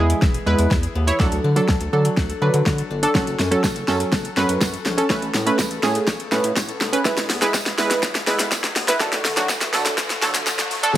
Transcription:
Already playing: E2 G#3 B3 E4 G#4 C#5 E5
0.00 G#4
0.10 E3, closed hi-hat
0.22 E1 E5, kick, snare
0.34 G#4, closed hi-hat
0.46 E2 G#3 B3 E4 B4
0.59 E2 E3, closed hi-hat
0.71 E2 E5, kick, snare
0.83 G#4, closed hi-hat
0.95 D#2 B3
1.07 E3 E4 C#5, closed hi-hat
1.20 D2 F#3 D4 A4 F#5, kick, snare
1.32 D2 A4, closed hi-hat
1.44 D3 D4
1.56 F#3 D4 A4, closed hi-hat
1.68 D2, kick, snare
1.81 D2 A4, closed hi-hat
1.93 D3 F#3 D4 A4
2.05 F#3, closed hi-hat
2.17 D2 F#5, kick, snare
2.30 A4, closed hi-hat
2.42 D3 F#3 D4 B4
2.54 D3 F#3, closed hi-hat
2.66 D3 F#5, kick, snare
2.78 A4, closed hi-hat
2.91 G1 D4
3.03 F#3 D4 A4, closed hi-hat
3.15 F#1 F#3 C#4 A4 F#5, kick, snare, riser
3.27 F#1 A4, closed hi-hat
3.39 F#2 C#4, snare, tambourine
3.51 F#3 C#4 A4, closed hi-hat
3.64 F#1, kick, snare, tambourine
3.76 F#1 A4, closed hi-hat
3.88 F#2 F#3 C#4 A4, snare, tambourine
4.00 F#3, closed hi-hat
4.12 F#1 F#5, kick, snare, tambourine
4.25 A4, closed hi-hat
4.36 F#2 F#3 C#4 B4, snare, tambourine
4.49 F#2 F#3, closed hi-hat
4.61 F#2 F#5, kick, snare, tambourine
4.73 A4, closed hi-hat
4.85 A#1 C#4, snare, tambourine
4.98 F#3 C#4 A4, closed hi-hat
5.10 A1 A3 C#4 B4 C#5, kick, snare, tambourine
5.22 A1 A4, closed hi-hat
5.34 A2 B3, snare, tambourine
5.46 C#3 A3 C#4 B4, closed hi-hat
5.59 A1, kick, snare, tambourine
5.71 A1 A4, closed hi-hat
5.83 A2 A3 B3 C#4 G#4, snare, tambourine
5.95 C#3, closed hi-hat
6.07 A1 C#5, kick, snare, tambourine
6.20 A4, closed hi-hat
6.32 A2 A3 B3 C#4 B4, snare, tambourine
6.44 A2 C#3, closed hi-hat
6.56 A2 C#5, kick, snare, tambourine
6.69 A4, closed hi-hat
6.81 F1 B3, snare, tambourine
6.93 C#3 C#4 B4, closed hi-hat
7.05 E1 G#3 E4 B4 E5, kick, snare, shaker
7.17 E1 G#4, snare, closed hi-hat, shaker
7.29 E2 B3, snare, open hi-hat, tambourine, shaker
7.42 E3 G#3 E4 B4, snare, closed hi-hat, shaker
7.54 E1, kick, snare, tambourine, shaker
7.66 E1 G#4, snare, closed hi-hat, shaker
7.78 E2 G#3 B3 E4 B4, snare, open hi-hat, tambourine, shaker
7.91 E3, snare, closed hi-hat, shaker
8.03 E1 E5, kick, snare, tambourine, shaker
8.15 G#4, snare, closed hi-hat, shaker
8.27 E2 G#3 B3 E4 B4, snare, open hi-hat, tambourine, shaker
8.39 E2 E3, snare, closed hi-hat, shaker
8.52 E2 E5, kick, snare, tambourine, shaker
8.64 G#4, snare, closed hi-hat, shaker
8.76 D#2 B3, snare, open hi-hat, tambourine, shaker
8.88 E3 E4 B4, snare, closed hi-hat, shaker
9.00 D2 F#3 D4 A4 D5, kick, snare, shaker
9.12 D2 F#4, snare, closed hi-hat, shaker
9.24 D3 A3, snare, open hi-hat, tambourine, shaker
9.37 D3 F#3 D4 F#4, snare, closed hi-hat, shaker
9.49 D2, kick, snare, tambourine, shaker
9.61 D2 F#4, snare, closed hi-hat, shaker
9.73 D3 F#3 A3 D4 A4, snare, open hi-hat, tambourine, shaker
9.86 D3, snare, closed hi-hat, shaker
9.98 D2 D5, kick, snare, tambourine, shaker
10.10 F#4, snare, closed hi-hat, shaker
10.22 D3 F#3 A3 D4 A4, snare, open hi-hat, tambourine, shaker
10.34 D3, snare, closed hi-hat, shaker
10.47 D3 D5, snare, tambourine, shaker
10.59 F#4, snare, closed hi-hat, shaker
10.71 G1 A3, open hi-hat, tambourine, shaker
10.83 D3 D4 A4, closed hi-hat, shaker

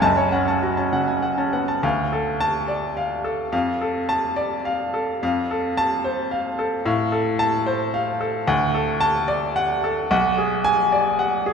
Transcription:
0.01 F#1 F#2 A5
0.17 C#5
0.32 C#4 F#5
0.48 A5
0.63 F#4
0.77 C#4 A5
0.93 C#3 F#5
1.08 G#5
1.22 F#5
1.38 C#4 A5
1.53 B3 F#5
1.68 A5
1.83 D2 F5
2.13 A4
2.40 A5
2.68 D5
2.97 F5
3.24 A4
3.52 F2 F5
3.81 A4
4.09 A5
4.36 D5
4.65 F5
4.94 A4
5.23 F2 F5
5.51 A4
5.77 A5
6.04 C5
6.31 F5
6.59 A4
6.85 A2 F5
7.12 A4
7.39 A5
7.66 C5
7.94 F5
8.21 A4
8.47 D2 F#5
8.75 A4
9.01 A5
9.28 D5
9.56 F#5
9.84 A4
10.11 B1 F#5
10.38 G#4
10.64 G#5
10.92 D5
11.19 F#5
11.46 G#4

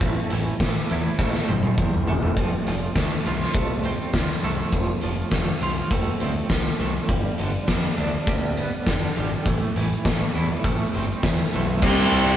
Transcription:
Already playing: E3 A3 C4
0.01 A1 A2, kick, closed hi-hat
0.30 A1 E3, closed hi-hat
0.60 A1 A3, kick, snare, closed hi-hat
0.90 E2 E4, closed hi-hat
1.19 A1 A3, kick, snare
1.34 snare
1.48 G1 C4, high tom
1.63 high tom
1.78 E2 E3, kick, mid tom
1.93 mid tom
2.07 E1 A3, floor tom
2.23 floor tom
2.36 F1 F3, kick, closed hi-hat
2.67 F1 F3, closed hi-hat
2.95 D2 A3, kick, snare, closed hi-hat
3.26 C2 F4, closed hi-hat
3.40 snare
3.54 C2 A3, kick, closed hi-hat
3.83 C4, closed hi-hat
4.13 D2 F3, kick, snare, closed hi-hat
4.43 C2 A3, closed hi-hat
4.72 F1, kick, closed hi-hat
5.01 F1 F3, closed hi-hat
5.31 F1 A3, kick, snare, closed hi-hat
5.61 C2 F4, closed hi-hat
5.91 F1 A3, kick, closed hi-hat
6.20 D2 C4, closed hi-hat
6.49 C2 F3, kick, snare, closed hi-hat
6.79 C2 A3, closed hi-hat
7.08 G1 G2, kick, closed hi-hat
7.38 G1 D3, closed hi-hat
7.68 F2 G3, kick, snare, closed hi-hat
7.98 D2 D4, closed hi-hat
8.27 D2 G3, kick, closed hi-hat
8.57 B3, closed hi-hat
8.87 F1 D3, kick, snare, closed hi-hat
9.16 G#1 G3, closed hi-hat
9.46 A1 A2, kick, closed hi-hat
9.76 A1 E3, closed hi-hat
10.05 A1 A3, kick, snare, closed hi-hat
10.35 E2 E4, closed hi-hat
10.64 A1 A3, kick, closed hi-hat
10.93 G1 C4, closed hi-hat
11.23 E2 E3, kick, snare, closed hi-hat
11.53 B1 A3, closed hi-hat
11.82 C2 C3 G3 C4, kick, crash
12.12 C2, ride

